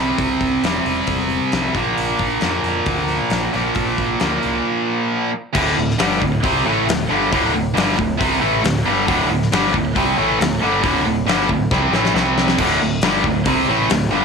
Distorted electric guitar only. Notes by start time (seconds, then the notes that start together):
Already playing: C3 G3 C4
0.63 C3 G3 C4
1.75 A#2 F3 A#3
2.41 A#2 F3 A#3
3.53 A#2 F3 A#3
4.20 A#2 F3 A#3
5.54 D2 A2 D3
5.76 D2 A2
5.99 G2 D3 G3
6.21 D2 A2
6.43 C3 G3 C4
6.65 A2 E3 A3
6.87 D2 A2
7.09 G2 D3 G3
7.32 D2 A2 D3
7.53 D2 A2
7.74 G2 D3 G3
7.96 D2 A2
8.18 C3 G3 C4
8.41 A2 E3 A3
8.62 D2 A2
8.86 G2 D3 G3
9.07 D2 A2 D3
9.30 D2 A2
9.52 G2 D3 G3
9.73 D2 A2
9.95 C3 G3 C4
10.17 A2 E3 A3
10.39 D2 A2
10.61 G2 D3 G3
10.82 D2 A2 D3
11.06 D2 A2
11.26 G2 D3 G3
11.49 D2 A2
11.72 C3 G3 C4
11.93 A2 E3 A3
12.14 C3 G3 C4
12.59 D2 A2 D3
12.82 D2 A2
13.04 G2 D3 G3
13.26 D2 A2
13.46 C3 G3 C4
13.68 A2 E3 A3
13.91 D2 A2
14.11 G2 D3 G3